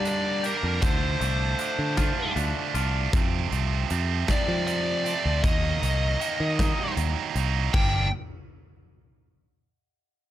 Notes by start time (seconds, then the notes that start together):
Already playing: G2 D3 G3 A#3 D4 G4
0.05 D4 D5, closed hi-hat
0.43 A#3 D4 G4 A#4, closed hi-hat
0.48 G3
0.63 F2
0.82 D2 D3 F3 A3 D4 C5, kick, closed hi-hat
1.20 C2 F3 A3 D4, closed hi-hat
1.59 D3 F3 A3 D4, closed hi-hat
1.79 D3
1.97 D3 F3 A3 D4 F4, kick, snare, closed hi-hat
2.36 D2 D4, closed hi-hat
2.74 C2 F3 A3 D4 F4, closed hi-hat
3.12 F2 C3 F3 A3 C4, kick, closed hi-hat
3.50 C2 F3 A3 C4, closed hi-hat
3.89 F2 C3 F3 A3 C4, closed hi-hat
4.28 F2 C3 F3 A3 C4 D5, kick, snare, closed hi-hat
4.48 F3
4.67 D5, closed hi-hat
5.04 F3 A3 C4, closed hi-hat
5.26 D2
5.43 D#2 D#3 F#3 A#3 D#4 D#5, kick, closed hi-hat
5.82 C2 F#3 A#3 D#4, closed hi-hat
6.20 D#3 F#3 A#3 D#4, closed hi-hat
6.40 D#3
6.59 D#3 F#3 A#3 D#4, kick, snare, closed hi-hat
6.97 D#2, closed hi-hat
7.36 C2 F#3 A#3 D#4, closed hi-hat
7.74 G1 G2 D3 G3 A#3 D4 G5, kick, crash